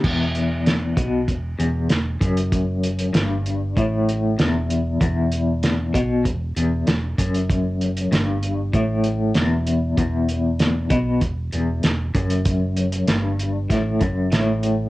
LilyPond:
<<
  \new Staff \with { instrumentName = "Clean electric guitar" } { \clef bass \time 4/4 \key e \minor \tempo 4 = 97 e,4. b,8 r8 e,8 e,8 fis,8~ | fis,4 g,4 a,4 e,4 | e,4. b,8 e,8 e,8 e,8 fis,8~ | fis,4 g,4 a,4 e,4 |
e,4. b,8 e,8 e,8 e,8 fis,8~ | fis,4 g,4 a,8 fis,8 a,4 | }
  \new Staff \with { instrumentName = "Fingered electric bass" } { \clef bass \time 4/4 \key e \minor e,,4. b,,8 e,,8 e,,8 e,,8 fis,,8~ | fis,,4 g,,4 a,,4 e,,4 | e,,4. b,,8 e,,8 e,,8 e,,8 fis,,8~ | fis,,4 g,,4 a,,4 e,,4 |
e,,4. b,,8 e,,8 e,,8 e,,8 fis,,8~ | fis,,4 g,,4 a,,8 fis,,8 a,,4 | }
  \new DrumStaff \with { instrumentName = "Drums" } \drummode { \time 4/4 <cymc bd>8 hh8 <hh sn>8 <hh bd>8 <hh bd>8 hh8 <hh sn>8 <hh bd>16 hh16 | <hh bd>8 hh16 hh16 <hh sn>8 hh8 <hh bd>8 hh8 <hh sn>8 hh8 | <hh bd>8 hh8 <hh sn>8 <hh bd>8 <hh bd>8 hh8 <hh sn>8 <hh bd>16 hh16 | <hh bd>8 hh16 hh16 <hh sn>8 hh8 <hh bd>8 hh8 <hh sn>8 hh8 |
<hh bd>8 hh8 <hh sn>8 <hh bd>8 <hh bd>8 hh8 <hh sn>8 <hh bd>16 hh16 | <hh bd>8 hh16 hh16 <hh sn>8 hh8 <hh bd sn>8 <hh bd>8 <hh sn>8 hh8 | }
>>